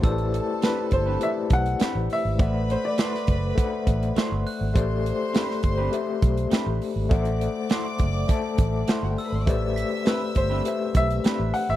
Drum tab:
HH |xxx-x-x-x-xxx-o-|x-x-x-x-x-xxx-o-|x-x-x-x-x-xxx-o-|xxx-x-x-x-x-x-o-|
SD |----o-------o---|----oo------o---|----oo------o---|----o-------o---|
BD |o-----o---o-----|o-----o-o-o-----|o-----o---o-----|o-----o-o-o-----|

HH |x-x-x-x-x-xxx-o-|
SD |----o-------o---|
BD |o-----o---o-----|